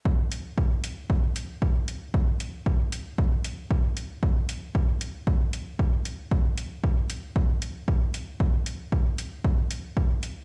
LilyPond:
\new DrumStaff \with { instrumentName = "Drums" } \drummode { \time 4/4 \tempo 4 = 115 bd8 hh8 bd8 hh8 bd8 hh8 bd8 hh8 | bd8 hh8 bd8 hh8 bd8 hh8 bd8 hh8 | bd8 hh8 bd8 hh8 bd8 hh8 bd8 hh8 | bd8 hh8 bd8 hh8 bd8 hh8 bd8 hh8 |
bd8 hh8 bd8 hh8 bd8 hh8 bd8 hh8 | }